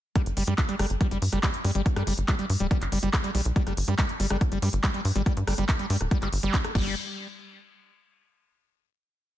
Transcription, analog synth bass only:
0.26 G1
0.37 G1
0.47 G2
0.79 G1
0.90 G1
1.11 G1
1.22 G2
1.33 G1
1.65 G2
1.75 G#1
1.96 G2
2.07 G1
2.18 G1
2.50 G2
2.60 D1
2.82 G1
2.92 G1
3.03 G1
3.35 B1
3.45 B1
3.67 G1
3.77 G1
3.88 G2
4.20 G1
4.30 G1
4.52 G1
4.62 G2
4.73 G1
5.05 G2
5.16 G#1
5.37 G2
5.47 G1
5.58 G1
5.90 G2
6.01 D1
6.22 G1
6.33 G1
6.43 G1
6.75 G1

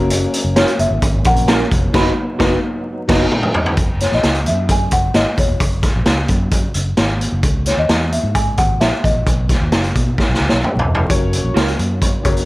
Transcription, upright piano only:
Already playing: F#3 A#3 C#4 F#4 A#4
1.25 F#3 A#3 C#4 F#4 A#4
1.92 F#3 B3 D#4 F#4 B4
2.39 F#3 B3 D#4 F#4 B4
3.08 F#3 B3 D#4 F#4 B4
11.09 C#4 F#4 A#4 C#5
12.23 C#4 F#4 G#4 C#5
12.30 A#4

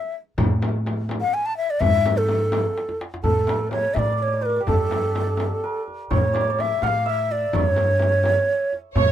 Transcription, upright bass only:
0.38 A2
1.81 G#2
3.23 A2
3.96 A2
4.68 G2
6.11 A2
6.82 A2
7.54 G2
8.96 A2

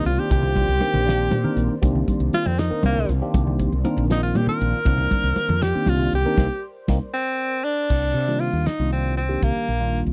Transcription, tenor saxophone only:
0.06 F4
0.19 G4
0.32 G4
2.34 F4
2.47 C4
2.59 D#4
2.85 A#3
4.12 D#4
4.23 F4
4.36 G4
4.49 A#4
5.62 G4
5.89 F4
6.15 G4
7.14 C4
7.64 D4
8.40 F4
8.67 D#4
8.92 C4
9.17 C4
9.43 A#3

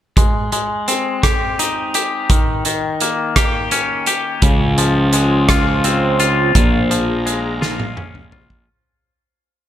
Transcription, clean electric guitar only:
0.17 G#3
0.53 G#3
0.88 C4
1.23 G4
1.59 D#4
1.95 G4
2.30 D#3
2.66 D#3
3.02 A#3
3.37 G4
3.72 C#4
4.07 G4
4.43 C#3
4.78 F3
5.13 G#3
5.50 F4
5.85 C4
6.20 F4
6.55 A#2
6.91 F3
7.26 G#3
7.62 F4
7.97 C#4
8.32 F4

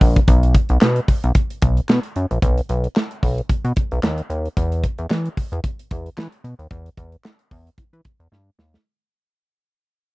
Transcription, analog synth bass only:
0.01 A#1
0.28 B1
0.70 B1
0.82 B2
1.24 B1
1.62 B1
1.89 B2
2.16 F#2
2.31 A#1
2.43 B1
2.69 B1
3.23 B1
3.49 B2
3.65 B2
3.92 B1
4.03 D#2
4.30 D#2
4.57 E2
4.99 E2
5.11 E3
5.52 E2
5.91 E2
6.18 E3
6.44 B2
6.59 D#2
6.71 E2
6.98 E2
7.51 E2
7.78 E3
7.93 E3
8.20 E2
8.32 G2
8.59 D#2

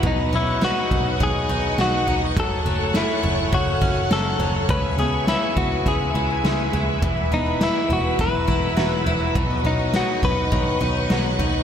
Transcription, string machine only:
Already playing: B4 F#5
0.02 D#5 C#6
2.35 A4 C#5
4.68 B4 E5 G#5
7.04 F#5 E6
9.37 D#5 C#6

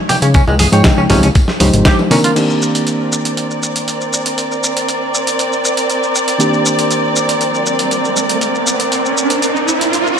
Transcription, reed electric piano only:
Already playing: F3 G#3 D#4
0.72 F3 G#3 D#4 G5
1.10 F3 G#3 C4 D#4 G4
1.60 F3 G#3 D#4 G4 C5
2.11 D#3 A#3 C4 D4 A#4
2.36 D#3 A#3 C4 D4 G4
6.39 D#3 A#3 C4 D4 G4

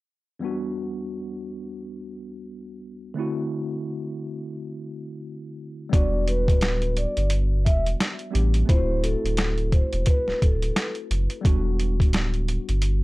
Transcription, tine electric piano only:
0.39 E2 G3 B3
0.44 D4 F#4
3.14 D3 A3 C4
3.18 E4 F#4
5.89 G3 B3 D4
5.95 F#4
8.31 G3 B3 D4 G4
8.65 A3 C4 E4
8.71 F4
8.77 F#4
11.41 G3 B3 D4
11.47 F#4

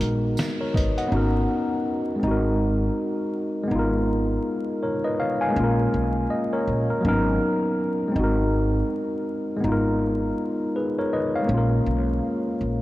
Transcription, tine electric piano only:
Already playing: G#3 B3 D#4 F#4 A#4
0.61 A#4 C#5
0.76 B4 D#5
0.98 D#5 F#5
1.09 B3 C#4 D#4
1.14 F#4 A#4
2.16 G#3 C4
2.24 D#4 F#4
2.31 A#4
3.64 G#3
3.68 B3 D#4
3.76 F4 A#4
4.83 A#4 C#5
5.04 B4 D#5
5.20 C#5 F5
5.41 F5 G#5
5.48 G#3 A#3
5.56 C#4
5.60 F4 A#4
6.30 D#5
6.53 A#4 C#5
6.90 A#4
7.01 F#3 A#3 C#4
7.07 B3 D#4 A#4
8.08 G#3 C4
8.16 D#4 F#4
8.24 A#4
9.57 G#3
9.61 B3 D#4
9.68 F4 A#4
10.76 G#4 B4
10.98 A#4 C#5
11.13 B4 D#5
11.35 C#5 F5
11.42 G#3 A#3
11.50 C#4
11.54 F4 A#4

